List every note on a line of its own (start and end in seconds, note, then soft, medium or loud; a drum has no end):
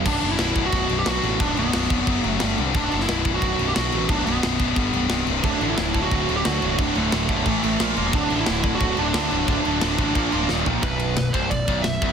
0.05 0.18 B0 medium
0.05 0.22 B1 loud
0.05 0.22 F#2 loud
0.05 0.22 B2 loud
0.05 0.55 F#3 loud
0.05 0.32 D4 loud
0.05 0.54 D4 loud
0.05 kick loud
0.05 crash loud
0.05 crash medium
0.22 0.35 F#1 medium
0.22 0.38 B1 medium
0.22 0.39 F#2 medium
0.22 0.39 B2 loud
0.22 crash medium
0.31 0.66 E4 loud
0.39 0.52 B0 loud
0.39 0.57 B1 medium
0.39 0.56 F#2 medium
0.39 0.56 B2 medium
0.39 snare loud
0.39 crash medium
0.55 0.68 B0 medium
0.55 0.73 B1 medium
0.55 0.73 F#2 loud
0.55 0.73 B2 loud
0.55 1.40 F#3 medium
0.55 1.39 D4 medium
0.55 kick medium
0.55 crash medium
0.66 0.97 F#4 loud
0.72 0.85 B0 medium
0.72 0.90 B1 medium
0.72 0.89 F#2 medium
0.72 0.89 B2 loud
0.72 kick loud
0.72 crash medium
0.89 1.02 B0 loud
0.89 1.06 B1 loud
0.89 1.06 F#2 loud
0.89 1.06 B2 loud
0.89 crash medium
0.99 1.07 G4 loud
1.06 1.19 B1 loud
1.06 1.23 B1 medium
1.06 1.23 F#2 medium
1.06 1.23 B2 medium
1.06 1.39 F#4 loud
1.06 snare loud
1.06 crash loud
1.23 1.36 A1 loud
1.23 1.39 B1 medium
1.23 1.40 F#2 medium
1.23 1.40 B2 medium
1.23 crash medium
1.40 1.52 B0 loud
1.40 1.57 B1 loud
1.40 1.57 F#2 loud
1.40 1.56 B2 loud
1.40 1.89 F#3 loud
1.40 1.56 D4 loud
1.40 1.88 D4 loud
1.40 kick loud
1.40 crash medium
1.56 1.69 B0 medium
1.56 1.72 B1 medium
1.56 1.73 F#2 medium
1.56 1.73 B2 loud
1.56 2.26 B3 medium
1.56 crash medium
1.73 1.86 B0 medium
1.73 1.89 B1 medium
1.73 1.89 F#2 medium
1.73 1.89 B2 medium
1.73 snare loud
1.73 crash loud
1.82 snare soft
1.89 2.03 F1 medium
1.89 2.07 B1 medium
1.89 2.07 F#2 loud
1.89 2.06 B2 loud
1.89 2.06 F#3 medium
1.89 2.06 D4 medium
1.89 kick loud
1.89 crash medium
2.07 2.19 F#1 medium
2.07 2.24 F#2 loud
2.07 2.23 C#3 loud
2.07 2.23 F#3 loud
2.07 kick loud
2.07 crash medium
2.24 2.37 F#1 loud
2.24 2.40 F#2 medium
2.24 2.40 C#3 loud
2.24 2.40 F#3 loud
2.24 2.55 A3 medium
2.24 crash medium
2.40 2.54 G1 loud
2.40 2.57 G2 loud
2.40 2.57 D3 loud
2.40 2.56 G3 loud
2.40 snare loud
2.40 crash medium
2.57 2.71 C2 loud
2.57 2.74 G2 medium
2.57 2.74 D3 medium
2.57 2.73 G3 medium
2.57 crash medium
2.75 2.87 B0 loud
2.75 2.92 B1 loud
2.75 2.92 F#2 loud
2.75 2.91 B2 loud
2.75 3.24 F#3 loud
2.75 3.01 D4 loud
2.75 3.23 D4 loud
2.75 kick loud
2.75 crash medium
2.92 3.05 F#1 medium
2.92 3.07 B1 medium
2.92 3.07 F#2 medium
2.92 3.07 B2 loud
2.92 crash medium
3.00 3.35 E4 loud
3.00 snare soft
3.08 3.22 B0 loud
3.08 3.25 B1 medium
3.08 3.25 F#2 medium
3.08 3.24 B2 medium
3.08 snare loud
3.08 crash medium
3.25 3.37 B0 medium
3.25 3.42 B1 medium
3.25 3.42 F#2 loud
3.25 3.42 B2 loud
3.25 4.09 F#3 medium
3.25 4.08 D4 medium
3.25 kick medium
3.25 crash medium
3.35 3.68 F#4 loud
3.42 3.54 B0 medium
3.42 3.60 B1 loud
3.42 3.59 F#2 medium
3.42 3.58 B2 loud
3.42 kick loud
3.42 crash medium
3.59 3.72 B0 loud
3.59 3.75 B1 medium
3.59 3.75 F#2 loud
3.59 3.76 B2 loud
3.59 crash medium
3.68 3.74 G4 loud
3.75 3.93 B1 medium
3.75 3.89 B1 medium
3.75 3.92 F#2 medium
3.75 3.92 B2 loud
3.75 4.07 F#4 loud
3.75 snare loud
3.75 crash loud
3.92 4.05 A1 loud
3.92 4.08 B1 medium
3.92 4.09 F#2 medium
3.92 4.09 B2 medium
3.92 crash medium
4.09 4.22 B0 loud
4.09 4.25 B1 loud
4.09 4.25 F#2 loud
4.09 4.24 B2 loud
4.09 4.59 F#3 loud
4.09 4.25 D4 loud
4.09 4.58 D4 loud
4.09 kick loud
4.09 crash medium
4.25 4.39 B0 medium
4.25 4.41 B1 medium
4.25 4.41 F#2 medium
4.25 4.42 B2 loud
4.25 5.23 B3 medium
4.25 crash medium
4.42 4.56 B0 medium
4.42 4.58 B1 medium
4.42 4.58 F#2 medium
4.42 4.58 B2 medium
4.42 snare loud
4.42 crash loud
4.59 4.72 B0 medium
4.59 4.76 B1 medium
4.59 4.75 F#2 loud
4.59 4.76 B2 loud
4.59 4.76 F#3 medium
4.59 4.75 D4 medium
4.59 kick medium
4.59 crash medium
4.76 4.89 G1 loud
4.76 4.93 G2 loud
4.76 4.93 D3 loud
4.76 4.92 G3 loud
4.76 kick loud
4.76 crash medium
4.93 5.06 B0 medium
4.93 5.09 G2 loud
4.93 5.10 D3 loud
4.93 5.10 G3 loud
4.93 crash medium
5.10 5.23 C1 loud
5.10 5.27 C2 loud
5.10 5.26 G2 loud
5.10 5.26 C3 loud
5.10 snare loud
5.10 crash loud
5.27 5.40 C1 loud
5.27 5.44 C2 medium
5.27 5.43 G2 medium
5.27 5.43 C3 medium
5.27 crash medium
5.44 5.56 D1 medium
5.44 5.61 D2 medium
5.44 5.61 A2 loud
5.44 5.60 D3 loud
5.44 5.94 F#3 loud
5.44 5.93 A3 loud
5.44 5.68 D4 loud
5.44 5.92 D4 loud
5.44 kick loud
5.44 crash medium
5.61 5.74 A1 medium
5.61 5.77 D2 medium
5.61 5.78 A2 medium
5.61 5.78 D3 loud
5.61 crash medium
5.70 6.02 E4 loud
5.78 5.91 D1 medium
5.78 5.94 D2 medium
5.78 5.93 A2 loud
5.78 5.93 D3 medium
5.78 snare loud
5.78 crash medium
5.93 6.07 D1 medium
5.93 6.10 D2 medium
5.93 6.10 A2 loud
5.93 6.11 D3 loud
5.93 6.78 F#3 medium
5.93 6.78 A3 medium
5.93 6.77 D4 medium
5.93 kick medium
5.93 crash medium
6.02 6.36 F#4 loud
6.11 6.24 D1 medium
6.11 6.27 D2 medium
6.11 6.27 A2 medium
6.11 6.27 D3 loud
6.11 kick loud
6.11 crash medium
6.28 6.41 D1 loud
6.28 6.44 D2 loud
6.28 6.45 A2 loud
6.28 6.45 D3 loud
6.28 crash medium
6.37 6.45 G4 medium
6.45 6.61 D2 medium
6.45 6.58 D2 medium
6.45 6.61 A2 loud
6.45 6.60 D3 loud
6.45 6.79 F#4 loud
6.45 snare loud
6.45 crash medium
6.61 6.75 C1 medium
6.61 6.78 D2 medium
6.61 6.78 A2 medium
6.61 6.79 D3 medium
6.61 crash medium
6.78 6.91 D1 loud
6.78 6.95 D2 medium
6.78 6.95 A2 loud
6.78 6.95 D3 loud
6.78 7.29 F#3 loud
6.78 7.28 A3 loud
6.78 6.97 D4 loud
6.78 7.27 D4 loud
6.78 kick loud
6.78 crash medium
6.95 7.09 D1 medium
6.95 7.11 D2 medium
6.95 7.11 A2 medium
6.95 7.12 D3 loud
6.95 7.93 A3 medium
6.95 crash medium
7.12 7.26 D1 medium
7.12 7.28 D2 medium
7.12 7.28 A2 medium
7.12 7.28 D3 loud
7.12 snare loud
7.12 crash medium
7.29 7.42 B0 medium
7.29 7.45 D2 medium
7.29 7.45 A2 loud
7.29 7.45 D3 loud
7.29 7.46 F#3 medium
7.29 7.46 A3 medium
7.29 7.45 D4 medium
7.29 kick loud
7.29 crash medium
7.46 7.58 A1 medium
7.46 7.62 A2 loud
7.46 7.62 E3 loud
7.46 7.62 A3 loud
7.46 kick loud
7.46 crash medium
7.63 7.76 A1 medium
7.63 7.79 A2 loud
7.63 7.79 E3 loud
7.63 7.79 A3 loud
7.63 crash medium
7.79 7.92 A#1 medium
7.79 7.97 A#2 loud
7.79 7.96 F3 loud
7.79 7.96 A#3 loud
7.79 snare loud
7.79 crash loud
7.97 8.10 E1 loud
7.97 8.13 A#2 medium
7.97 8.13 F3 medium
7.97 8.13 A#3 loud
7.97 crash medium
8.13 8.26 D1 loud
8.13 8.30 D2 loud
8.13 8.30 A2 loud
8.13 8.29 D3 loud
8.13 8.64 F#3 loud
8.13 8.63 A3 loud
8.13 8.41 D4 loud
8.13 8.62 D4 loud
8.13 kick loud
8.13 crash medium
8.30 8.43 A1 medium
8.30 8.46 D2 medium
8.30 8.47 A2 medium
8.30 8.46 D3 loud
8.30 crash medium
8.40 8.71 E4 loud
8.46 8.60 D1 loud
8.46 8.63 D2 medium
8.46 8.63 A2 medium
8.46 8.63 D3 medium
8.46 snare loud
8.46 crash medium
8.63 8.76 D1 medium
8.63 8.80 D2 medium
8.63 8.79 A2 loud
8.63 8.80 D3 loud
8.63 9.48 F#3 medium
8.63 9.48 A3 medium
8.63 9.47 D4 medium
8.63 kick medium
8.63 crash medium
8.75 8.98 F#4 loud
8.80 8.93 D1 loud
8.80 8.97 D2 medium
8.80 8.97 A2 medium
8.80 8.97 D3 loud
8.80 kick loud
8.80 crash medium
8.97 9.11 D1 loud
8.97 9.12 D2 medium
8.97 9.12 A2 loud
8.97 9.13 D3 loud
8.97 10.46 D4 medium
8.97 crash medium
9.13 9.30 D2 loud
9.13 9.27 D2 loud
9.13 9.30 A2 medium
9.13 9.30 D3 medium
9.13 snare loud
9.13 crash medium
9.31 9.44 C1 loud
9.31 9.46 D2 medium
9.31 9.47 A2 loud
9.31 9.47 D3 medium
9.31 crash medium
9.47 9.61 D1 loud
9.47 9.64 D2 loud
9.47 9.64 A2 loud
9.47 9.63 D3 loud
9.47 9.98 F#3 loud
9.47 9.98 A3 loud
9.47 9.96 D4 loud
9.47 kick loud
9.47 crash medium
9.65 9.78 D1 medium
9.65 9.80 D2 medium
9.65 9.81 A2 medium
9.65 9.81 D3 medium
9.65 crash medium
9.81 9.95 D1 medium
9.81 9.98 D2 medium
9.81 9.97 A2 medium
9.81 9.97 D3 loud
9.81 snare loud
9.81 crash medium
9.98 10.11 A1 medium
9.98 10.15 D2 medium
9.98 10.15 A2 medium
9.98 10.15 D3 loud
9.98 10.15 F#3 medium
9.98 10.15 A3 medium
9.98 10.14 D4 medium
9.98 kick loud
9.98 crash medium
10.15 10.28 A#1 medium
10.15 10.32 A#2 medium
10.15 10.31 F3 loud
10.15 10.31 A#3 loud
10.15 kick loud
10.15 crash medium
10.32 10.45 D1 medium
10.32 10.49 A#2 medium
10.32 10.49 F3 medium
10.32 10.48 A#3 loud
10.32 crash medium
10.49 10.62 D#1 medium
10.49 10.66 D#2 medium
10.49 10.65 A#2 loud
10.49 10.65 D#3 loud
10.49 snare medium
10.66 10.79 A#1 loud
10.66 10.82 D#2 medium
10.66 10.82 A#2 medium
10.66 10.82 D#3 loud
10.66 floor tom loud
10.83 11.15 B0 medium
10.83 11.16 B1 loud
10.83 11.31 B4 medium
10.83 kick loud
10.83 ride medium
11.00 ride medium
11.17 11.33 B0 medium
11.17 11.31 B1 medium
11.17 snare loud
11.17 ride medium
11.33 11.50 C1 medium
11.33 11.51 C2 medium
11.33 11.51 C5 medium
11.33 kick loud
11.33 ride medium
11.50 11.67 B0 medium
11.50 11.65 B1 medium
11.50 11.82 D5 medium
11.50 kick medium
11.50 ride medium
11.68 11.84 B0 loud
11.68 11.84 B1 medium
11.68 kick loud
11.68 ride medium
11.82 12.01 B0 medium
11.82 11.99 B1 medium
11.82 12.12 E5 loud
11.82 snare loud
11.82 ride medium
12.02 12.12 C1 loud
12.02 12.12 C2 medium
12.02 kick loud
12.02 ride medium